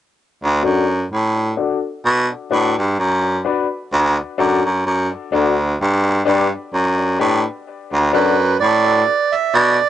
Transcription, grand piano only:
0.63 D4 F#4 A4 D5
1.57 D4 F#4 A4 D5
2.51 D4 F#4 B4 D5
3.45 D4 F#4 B4 D5
4.38 D4 F#4 A4 D5
5.32 D4 F#4 A4 D5
6.25 D4 G4 B4 D5
7.19 D4 G4 B4 D5
8.13 D4 F#4 A4 D5

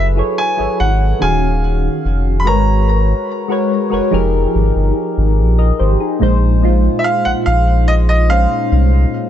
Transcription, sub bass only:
Already playing: F#1
0.59 G#1
0.80 G#1
1.22 D#1
2.05 F1
2.46 G#1
3.92 F1
4.13 F1
4.55 G#1
4.76 G1
5.17 G#1
5.38 A#1
5.80 G#1
6.21 A#1
7.26 A#1
7.47 A#1
8.72 C2

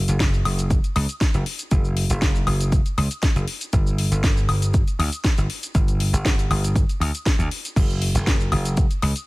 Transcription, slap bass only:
0.08 F#1
0.45 F#1
0.96 C#2
1.34 F#1
1.72 F#1
2.10 F#1
2.47 F#1
2.98 C#2
3.36 F#1
3.73 G1
4.11 G1
4.49 G1
4.99 D2
5.38 G1
5.75 G1
6.13 G1
6.50 G1
7.00 D2
7.39 D2
7.76 F#1
8.14 F#1
8.52 F#1
9.03 C#2

